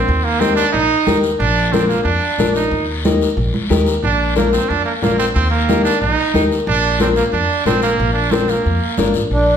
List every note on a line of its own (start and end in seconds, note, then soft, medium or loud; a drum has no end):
0.00 0.25 C4 medium
0.08 0.61 D#2 loud
0.08 long guiro medium
0.24 0.41 A#3 medium
0.40 0.55 C4 medium
0.40 0.64 D#4 medium
0.40 0.64 G4 medium
0.40 0.64 A#4 medium
0.40 high conga medium
0.40 short guiro medium
0.56 0.72 D4 loud
0.56 short guiro medium
0.72 0.87 A#1 medium
0.72 1.19 D#4 loud
0.72 long guiro medium
1.06 1.33 D#2 medium
1.06 1.30 D#4 medium
1.06 1.30 G4 medium
1.06 1.30 A#4 medium
1.06 high conga medium
1.06 short guiro medium
1.23 short guiro medium
1.39 1.93 A#1 loud
1.39 1.74 D4 loud
1.39 long guiro medium
1.73 1.87 C4 medium
1.73 1.96 D4 medium
1.73 1.96 F4 medium
1.73 1.97 A#4 medium
1.73 high conga medium
1.73 short guiro medium
1.88 2.03 A#3 medium
1.88 short guiro medium
2.04 2.19 F2 loud
2.04 2.51 D4 medium
2.04 long guiro medium
2.38 2.65 A#1 medium
2.38 2.62 D4 medium
2.38 2.62 F4 medium
2.38 2.62 A#4 medium
2.38 high conga medium
2.38 short guiro medium
2.55 2.86 D#4 medium
2.55 short guiro medium
2.71 3.24 D#2 loud
2.71 long guiro medium
3.04 3.28 D#4 medium
3.04 3.28 G4 medium
3.04 3.28 A#4 medium
3.04 high conga medium
3.04 short guiro medium
3.22 short guiro medium
3.37 3.50 A#1 medium
3.37 long guiro medium
3.54 high conga medium
3.70 3.97 D#2 medium
3.70 3.94 D#4 medium
3.70 3.94 G4 medium
3.70 3.94 A#4 medium
3.70 high conga medium
3.70 short guiro medium
3.86 short guiro medium
4.03 4.56 A#1 loud
4.03 4.34 D4 loud
4.03 long guiro medium
4.36 4.52 A#3 medium
4.36 4.59 D4 medium
4.36 4.59 F4 medium
4.36 4.60 A#4 medium
4.36 high conga medium
4.36 short guiro medium
4.52 4.70 C4 medium
4.52 short guiro medium
4.69 4.83 F2 medium
4.69 4.85 D4 medium
4.69 long guiro medium
4.85 4.93 A#3 medium
5.02 5.29 A#1 medium
5.02 5.18 A#3 medium
5.02 5.25 D4 medium
5.02 5.26 F4 medium
5.02 5.26 A#4 medium
5.02 high conga medium
5.02 short guiro medium
5.19 5.26 C4 medium
5.19 short guiro medium
5.35 5.89 D#2 loud
5.35 5.50 C4 loud
5.35 long guiro medium
5.51 5.82 A#3 medium
5.69 5.92 D#4 medium
5.69 5.92 G4 medium
5.69 5.92 A#4 medium
5.69 high conga medium
5.69 short guiro medium
5.84 6.00 D4 loud
5.84 short guiro medium
6.01 6.15 A#1 loud
6.01 6.47 D#4 loud
6.01 long guiro medium
6.34 6.61 D#2 medium
6.34 6.57 D#4 medium
6.34 6.58 G4 medium
6.34 6.58 A#4 medium
6.34 high conga medium
6.34 short guiro medium
6.52 short guiro medium
6.67 7.20 A#1 loud
6.67 6.98 D4 loud
6.67 long guiro medium
7.00 7.08 C4 medium
7.00 7.23 D4 medium
7.00 7.23 F4 medium
7.00 7.23 A#4 medium
7.00 high conga medium
7.00 short guiro medium
7.16 7.24 A#3 medium
7.16 short guiro medium
7.33 7.46 F2 loud
7.33 7.63 D4 medium
7.33 long guiro medium
7.65 7.92 A#1 medium
7.65 7.81 C4 medium
7.65 7.89 D4 medium
7.65 7.89 F4 medium
7.65 7.89 A#4 medium
7.65 high conga medium
7.65 short guiro medium
7.82 8.12 A#3 medium
7.82 short guiro medium
7.99 8.52 A#1 loud
7.99 long guiro medium
8.13 8.33 D4 medium
8.31 8.51 C4 medium
8.31 8.55 D4 medium
8.31 8.55 F4 medium
8.31 8.55 A#4 medium
8.31 high conga medium
8.31 short guiro medium
8.48 9.15 A#3 medium
8.48 short guiro medium
8.64 8.79 F2 medium
8.64 long guiro medium
8.97 9.13 G1 medium
8.97 9.21 D4 medium
8.97 9.21 F4 medium
8.97 9.21 A#4 medium
8.97 high conga medium
8.97 short guiro medium
9.14 9.29 A1 medium
9.14 short guiro medium
9.31 9.57 A#1 medium
9.31 9.57 D4 medium
9.31 long guiro medium